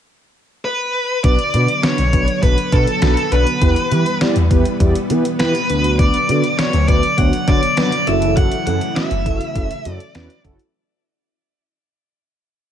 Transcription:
0.65 B4
1.24 B1 D3 F#3 B3 D4 F#4 B4 D5, kick, closed hi-hat
1.39 closed hi-hat
1.54 B2 B3 D4 F#4 B4, closed hi-hat
1.68 closed hi-hat
1.83 B3 D4 F#4 B4 C#5, snare, closed hi-hat
1.98 B1, closed hi-hat
2.13 B1 B3 D4 F#4 B4, kick, closed hi-hat
2.28 closed hi-hat
2.43 B1 B3 D4 F#4 B4, kick, closed hi-hat
2.58 closed hi-hat
2.72 B2 B3 D4 F#4 A4 B4, kick, closed hi-hat
2.88 closed hi-hat
3.02 B1 B3 D4 F#4 B4, snare, closed hi-hat
3.17 closed hi-hat
3.32 B1 B3 D4 F#4 B4, closed hi-hat
3.47 closed hi-hat
3.62 E2 E3 G3 B3 E4 G4 B4, kick, closed hi-hat
3.76 closed hi-hat
3.91 E3 B3 E4 G4 B4, closed hi-hat
4.06 closed hi-hat
4.21 B3 E4 G4 D5, snare, closed hi-hat
4.36 E2, closed hi-hat
4.51 E2 B3 E4 G4 B4, kick, closed hi-hat
4.65 closed hi-hat
4.80 E2 B3 E4 G4 D5, kick, closed hi-hat
4.95 closed hi-hat
5.10 E3 B3 E4 G4 B4, closed hi-hat
5.25 closed hi-hat
5.40 E2 B3 E4 G4 B4, snare, closed hi-hat
5.55 closed hi-hat
5.69 D2 D3 F#3 B3 D4 F#4 B4, closed hi-hat
5.84 closed hi-hat
5.99 D5, kick, closed hi-hat
6.14 closed hi-hat
6.29 D3 B3 D4 F#4 B4, closed hi-hat
6.44 closed hi-hat
6.59 B3 D4 F#4 C#5 D5, snare, closed hi-hat
6.73 D2, closed hi-hat
6.88 D2 B3 D4 F#4 B4 D5, kick, closed hi-hat
7.03 closed hi-hat
7.18 D2 B3 D4 F#4 C#5 F#5, kick, closed hi-hat
7.33 closed hi-hat
7.48 D3 B3 D4 F#4 C#5 D5, kick, closed hi-hat
7.63 closed hi-hat
7.77 F#2 B3 D4 F#4 B4 D5, snare, closed hi-hat
7.92 closed hi-hat
8.07 F#1 C#3 E3 A3 C#4 E4 F#4 A4 E5, closed hi-hat
8.22 closed hi-hat
8.37 F#5, kick, closed hi-hat
8.52 closed hi-hat
8.66 F#2 C#4 E4 F#4 A4 F#5, closed hi-hat
8.81 closed hi-hat
8.96 C#4 E4 F#4 B4 E5, snare, closed hi-hat
9.11 F#1, closed hi-hat
9.26 F#1 C#4 E4 F#4 A4, kick, closed hi-hat
9.41 closed hi-hat
9.55 F#1 C#4 E4 F#4 A4, kick, closed hi-hat
9.71 closed hi-hat
9.85 F#2 C#4 E4 F#4 A4, closed hi-hat
9.93 D5
10.00 closed hi-hat
10.15 E2 C#4 E4 F#4 B4, snare, closed hi-hat
10.30 closed hi-hat
10.45 F#1 C#4 E4 F#4 A4, kick, closed hi-hat
10.59 closed hi-hat

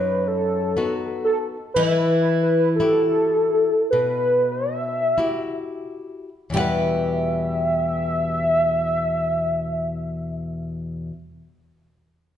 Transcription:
Already playing: F#2 D#4 B4
0.28 A4
0.77 B3 D#4 F#4
1.25 A4
1.74 E3 E4 B4
1.83 B4
1.91 B4
2.01 B4
2.10 B4
2.17 B4
2.25 B4
2.35 B4
2.43 B4
2.51 B4
2.60 B4
2.76 A4
2.80 E4 F#4 G4
3.90 B2 B4
4.29 D#4
4.52 E5
5.18 E4 F#4 G4
6.50 E2 B2 G4
6.54 G3 E4 E5
6.58 B4 F#5

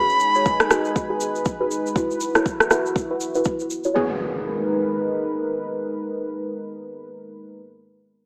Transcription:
Already playing: G#3 D#4 F#4 G#4 B4 G#5 B5
0.09 shaker
0.20 shaker
0.35 F#4 G#4 C#5, shaker
0.46 kick, shaker
0.60 cross-stick, shaker
0.70 F#4 G#4 B4, cross-stick, shaker
0.85 shaker
0.96 kick, shaker
1.10 F#4 G#4 B4
1.21 shaker
1.36 shaker
1.45 kick, shaker
1.60 F#4 G#4 B4
1.71 shaker
1.86 shaker
1.96 E4 F#4 B4, kick, shaker
2.11 shaker
2.21 shaker
2.35 E4 F#4 C#5, cross-stick, shaker
2.46 kick, shaker
2.60 cross-stick, shaker
2.71 E4 F#4 B4, cross-stick, shaker
2.86 shaker
2.96 kick, shaker
3.10 E4 F#4 B4
3.21 shaker
3.35 E4 F#4 B4, shaker
3.45 E4 F#4 B4, kick, shaker
3.60 shaker
3.70 shaker
3.84 E4 F#4 C#5, shaker
3.95 G#3 B3 D#4 F#4 G#4 A#4 B4, impact

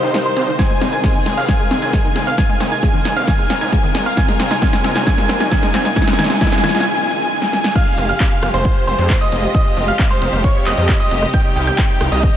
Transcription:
Already playing: C3 D#3 G3 D#4 G4 C5 C6
0.03 G1 D#4, closed hi-hat
0.14 D#4, snare, closed hi-hat
0.25 D#4 C5 C6, closed hi-hat
0.37 C2 C4, open hi-hat
0.48 D#3, closed hi-hat
0.59 D#3 G#3 D#4 G#4 G#5 G#6, kick, snare, closed hi-hat, riser, shaker
0.70 G#3, closed hi-hat, shaker
0.81 G#1 C4, snare, open hi-hat, shaker
0.93 D#4 G#5 G#6, closed hi-hat, shaker
1.04 G#4, kick, snare, closed hi-hat, shaker
1.15 D#3, closed hi-hat, shaker
1.26 G#1 G#3, snare, open hi-hat, shaker
1.37 G#1 C4 F5 F6, closed hi-hat, shaker
1.48 D#3 G#5 G#6, kick, snare, closed hi-hat, shaker
1.60 G#3, closed hi-hat, shaker
1.71 G#1 C4, snare, open hi-hat, shaker
1.82 G#1 D#4 G#5 G#6, closed hi-hat, shaker
1.93 G#4, kick, snare, closed hi-hat, shaker
2.05 D#3, closed hi-hat, shaker
2.16 G#1 G#3, snare, open hi-hat, shaker
2.27 C4 F5 F6, closed hi-hat, shaker
2.38 D#3 A#4 G#5 G#6, kick, snare, closed hi-hat, shaker
2.49 G#3, closed hi-hat, shaker
2.60 G#1 C4, snare, open hi-hat, shaker
2.72 D#4 G#5 G#6, closed hi-hat, shaker
2.83 G#4, kick, snare, closed hi-hat, shaker
2.94 D#3, closed hi-hat, shaker
3.05 G#1 G#3, snare, open hi-hat, shaker
3.16 G#1 C4 F5 F6, closed hi-hat, shaker
3.28 D#3 G#5 G#6, kick, snare, closed hi-hat, shaker
3.39 G#3, closed hi-hat, shaker
3.50 G#1 C4, snare, open hi-hat, shaker
3.61 G#1 D#4 G#5 G#6, closed hi-hat, shaker
3.72 G#4, kick, snare, closed hi-hat, shaker
3.84 D#3, closed hi-hat, shaker
3.95 G#1 G#3, snare, open hi-hat, shaker
4.06 C4 F5 F6, closed hi-hat, shaker
4.17 C3 D#3 F3 A#3 F4 G#5 G#6, kick, snare, closed hi-hat, shaker
4.28 G#3, snare, closed hi-hat, shaker
4.39 A#1 C4, snare, open hi-hat, shaker
4.51 D#4 G#5 G#6, snare, closed hi-hat, shaker
4.62 D#3 G#5 G#6, kick, snare, closed hi-hat, shaker
4.73 G#3, snare, closed hi-hat, shaker
4.84 A#1 C4, snare, open hi-hat, shaker
4.95 A#1 D#4 G#5 G#6, snare, closed hi-hat, shaker
5.06 D#3 G#5 G#6, kick, snare, closed hi-hat, shaker
5.18 G#3, snare, closed hi-hat, shaker
5.29 A#1 C4, snare, open hi-hat, shaker
5.40 A#1 D#4 G#5 G#6, snare, closed hi-hat, shaker
5.51 D#3 G#5 G#6, kick, snare, closed hi-hat, shaker
5.63 G#3, snare, closed hi-hat, shaker
5.74 A#1 C4, snare, open hi-hat, shaker
5.85 D#4 G#5 G#6, snare, closed hi-hat, shaker
5.96 D#3 D#4 G#5 G#6, kick, snare, closed hi-hat, shaker
6.02 snare
6.08 G#3, snare, closed hi-hat, shaker
6.13 snare
6.19 A#1 D#3 G#5 G#6, snare, open hi-hat, shaker
6.24 snare
6.30 G#3, snare, closed hi-hat, shaker
6.36 snare
6.41 D#3 G#5 G#6, kick, snare, closed hi-hat, shaker
6.47 snare
6.52 G#3, snare, closed hi-hat, shaker
6.58 snare
6.63 A#1 D#3 G#5 G#6, snare, open hi-hat, shaker
6.69 snare
6.75 A#1 G#3, snare, closed hi-hat, shaker
6.80 snare
6.86 G#5
7.08 G#5
7.31 G#5
7.42 snare
7.53 G#5, snare
7.64 snare
7.75 C3 G3 G#3 F4 G4 F5 F6, kick, closed hi-hat, crash, shaker
7.87 closed hi-hat
7.98 F1, open hi-hat, shaker
8.09 F5 F6, closed hi-hat, shaker
8.20 kick, clap, closed hi-hat, shaker
8.31 closed hi-hat, shaker
8.43 F1, cross-stick, open hi-hat, shaker
8.54 F1 C5 C6, closed hi-hat, shaker
8.65 kick, closed hi-hat, shaker
8.76 closed hi-hat
8.87 F1 C5 C6, open hi-hat, shaker
8.99 F2, closed hi-hat, shaker
9.10 kick, clap, closed hi-hat, shaker
9.21 D#5 D#6, closed hi-hat, shaker
9.32 F1, open hi-hat, shaker
9.43 closed hi-hat, shaker
9.54 D#5 D#6, kick, closed hi-hat, shaker
9.66 closed hi-hat
9.77 F1, open hi-hat, shaker
9.88 F5 F6, closed hi-hat, shaker
9.99 kick, clap, closed hi-hat, shaker
10.10 C5 C6, closed hi-hat, shaker
10.22 F1, open hi-hat, shaker
10.33 F1, closed hi-hat, shaker
10.44 C#5 C#6, kick, closed hi-hat, shaker
10.55 closed hi-hat
10.66 F1 D#5 D#6, clap, open hi-hat, shaker
10.78 F2, closed hi-hat, shaker
10.89 kick, clap, closed hi-hat, shaker
11.00 D#5 D#6, closed hi-hat, shaker
11.11 F1, open hi-hat, shaker
11.22 cross-stick, closed hi-hat, shaker
11.34 D#3 D#4 G5 G6, kick, closed hi-hat, shaker
11.45 closed hi-hat
11.56 C2, open hi-hat, shaker
11.67 G5 G6, closed hi-hat, shaker
11.78 kick, clap, closed hi-hat, shaker
11.90 closed hi-hat, shaker
12.01 C2, cross-stick, open hi-hat, shaker
12.12 C2 D#5 D#6, closed hi-hat, shaker
12.23 kick, closed hi-hat, shaker

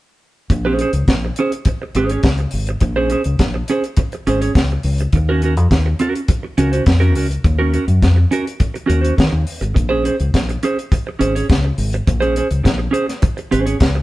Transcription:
0.50 A#1, muted clean electric guitar stroke, kick, closed hi-hat
0.65 C#4 G#4 C5
0.79 C#4 G#4 C5, closed hi-hat
0.93 C#2, muted clean electric guitar stroke, closed hi-hat
1.08 A#1, muted clean electric guitar stroke, kick, snare, closed hi-hat
1.25 muted clean electric guitar stroke
1.36 C#4 G#4, closed hi-hat
1.40 C5
1.52 muted clean electric guitar stroke, closed hi-hat
1.65 muted clean electric guitar stroke, kick, closed hi-hat
1.82 muted clean electric guitar stroke
1.95 G#1 C#4 G#4 C5, closed hi-hat
2.09 C#4 G#4 C#5, closed hi-hat
2.23 C#2, kick, snare, closed hi-hat
2.38 muted clean electric guitar stroke, closed hi-hat
2.51 G#1, open hi-hat
2.67 muted clean electric guitar stroke, closed hi-hat
2.80 A#1, muted clean electric guitar stroke, kick, closed hi-hat
2.96 C#4 G#4 C5
3.10 C#4 G#4 C5, closed hi-hat
3.24 C#2, muted clean electric guitar stroke, closed hi-hat
3.39 A#1, muted clean electric guitar stroke, kick, snare, closed hi-hat
3.54 muted clean electric guitar stroke
3.68 C#4 G#4 C5, closed hi-hat
3.84 muted clean electric guitar stroke, closed hi-hat
3.97 muted clean electric guitar stroke, kick, closed hi-hat
4.12 muted clean electric guitar stroke, closed hi-hat
4.27 G#1 C#4 G#4 C5, closed hi-hat
4.41 C#4 G#4 C#5, closed hi-hat
4.55 C#2, muted clean electric guitar stroke, kick, snare, closed hi-hat
4.70 muted clean electric guitar stroke, closed hi-hat
4.83 C#2, open hi-hat
4.98 muted clean electric guitar stroke, closed hi-hat
5.13 D#2, muted clean electric guitar stroke, kick, closed hi-hat
5.29 C#4 F#4 A#4
5.42 C#4 F#4 A#4, closed hi-hat
5.57 F2, muted clean electric guitar stroke, closed hi-hat
5.71 D#2, muted clean electric guitar stroke, kick, snare, closed hi-hat
5.86 muted clean electric guitar stroke
5.99 C#4 F#4 A#4, closed hi-hat
6.14 muted clean electric guitar stroke, closed hi-hat
6.28 muted clean electric guitar stroke, kick, closed hi-hat
6.43 muted clean electric guitar stroke
6.58 C#2 C#4 F#4 A#4, closed hi-hat
6.72 C#4 F#4 C5, closed hi-hat
6.86 F2, muted clean electric guitar stroke, kick, snare, closed hi-hat
7.00 C#4 F#4 A#4, closed hi-hat
7.15 C#2 C#4 F#4 A#4, open hi-hat
7.31 muted clean electric guitar stroke, closed hi-hat
7.44 D#2, muted clean electric guitar stroke, kick, closed hi-hat
7.59 C#4 F#4 A#4
7.73 C#4 F#4 A#4, closed hi-hat
7.88 F#2, closed hi-hat
8.02 F2, muted clean electric guitar stroke, kick, snare, closed hi-hat
8.16 muted clean electric guitar stroke
8.31 C#4 F#4 A#4, closed hi-hat
8.46 muted clean electric guitar stroke, closed hi-hat
8.60 muted clean electric guitar stroke, kick, closed hi-hat
8.74 muted clean electric guitar stroke, closed hi-hat
8.86 D#2 C#4 F#4 A#4, closed hi-hat
9.01 C#4 F#4 C5, closed hi-hat
9.17 D#3, muted clean electric guitar stroke, kick, snare, closed hi-hat
9.31 D#2, muted clean electric guitar stroke
9.47 open hi-hat
9.61 G#1, muted clean electric guitar stroke, closed hi-hat
9.74 A#1, muted clean electric guitar stroke, kick, closed hi-hat
9.89 C#4 G#4 C5
10.04 C#4 G#4 C5, closed hi-hat
10.20 C#2, muted clean electric guitar stroke, closed hi-hat
10.34 A#1, muted clean electric guitar stroke, kick, snare, closed hi-hat
10.49 muted clean electric guitar stroke, closed hi-hat
10.63 C#4 G#4 C5, closed hi-hat
10.78 muted clean electric guitar stroke, closed hi-hat
10.92 muted clean electric guitar stroke, kick, closed hi-hat
11.07 muted clean electric guitar stroke
11.19 G#1 C#4 G#4 C5, closed hi-hat
11.35 C#4 G#4 C#5, closed hi-hat
11.49 C#2, muted clean electric guitar stroke, kick, snare, closed hi-hat
11.65 muted clean electric guitar stroke
11.78 G#1, open hi-hat
11.93 muted clean electric guitar stroke, closed hi-hat
12.07 A#1, muted clean electric guitar stroke, kick, closed hi-hat
12.20 C#4 G#4 C5, closed hi-hat
12.36 C#4 G#4 C5, closed hi-hat
12.51 C#2, muted clean electric guitar stroke, closed hi-hat
12.64 A#1, muted clean electric guitar stroke, kick, snare, closed hi-hat
12.78 muted clean electric guitar stroke
12.91 C#4 G#4 C5, closed hi-hat
13.06 muted clean electric guitar stroke, snare, closed hi-hat
13.22 muted clean electric guitar stroke, kick, closed hi-hat
13.37 muted clean electric guitar stroke, closed hi-hat
13.51 G#1 C#4 G#4 C5, closed hi-hat
13.66 C#4 G#4 C#5, closed hi-hat
13.80 C#2, muted clean electric guitar stroke, kick, snare, closed hi-hat
13.95 muted clean electric guitar stroke

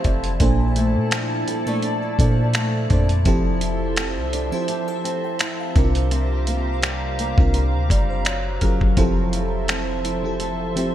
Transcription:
Already playing: F2 E3 F3 A3 C4 E4 G4 A4 C5 E5 F5 A5
0.04 F1 C4 D5, kick, closed hi-hat
0.24 C5, closed hi-hat
0.40 A#1 A#2 A#3 D4 A4 C5 D5, kick, closed hi-hat
0.76 A3, closed hi-hat
0.95 A#2
1.11 F3, finger snap, closed hi-hat
1.47 G3, closed hi-hat
1.66 A#2 A3 A#3 D4 A4 D5
1.82 D4, closed hi-hat
2.18 A#2 F3 A#3 D4 A4 D5, kick, closed hi-hat
2.54 A3, finger snap, closed hi-hat
2.90 F2 A#2 A#3 D4 A4 C5, kick, closed hi-hat
3.09 closed hi-hat
3.25 F1 F3 C4 E4 G4 A4 C5 E5, kick, closed hi-hat
3.61 E4, closed hi-hat
3.96 C4, finger snap, closed hi-hat
4.17 C2
4.33 D4, closed hi-hat
4.52 F3 C4 E4 G4 C5
4.68 G4, closed hi-hat
4.88 A4
5.04 C4, closed hi-hat
5.25 G5
5.39 E4 A5, finger snap, closed hi-hat
5.60 F5
5.75 C2 C3 C4 D4 E4 G4 A#4 F5 A#5, kick, closed hi-hat
5.84 F4
5.95 closed hi-hat
6.11 C3, closed hi-hat
6.47 A#3, closed hi-hat
6.83 G3, finger snap, closed hi-hat
7.19 A#3, closed hi-hat
7.37 C2 C3 C4 D4 F4 A#4, kick
7.54 F4 A#4, closed hi-hat
7.74 D2
7.90 F#1 G3 D5, kick, closed hi-hat
8.10 C5
8.25 F#3 C#5, finger snap, closed hi-hat
8.61 F#1 F#3 C#4 F4 G#4 A#4, kick, closed hi-hat
8.81 F#1, kick
8.97 F1 F3 C4 E4 G4 A4 C5 E5 A5, kick, closed hi-hat
9.33 E4, closed hi-hat
9.68 C4, finger snap, closed hi-hat
10.04 E4, closed hi-hat
10.23 F3 C4 E4 G4 A4
10.40 A4, closed hi-hat
10.75 F3 C4 E4 G4 C5, closed hi-hat

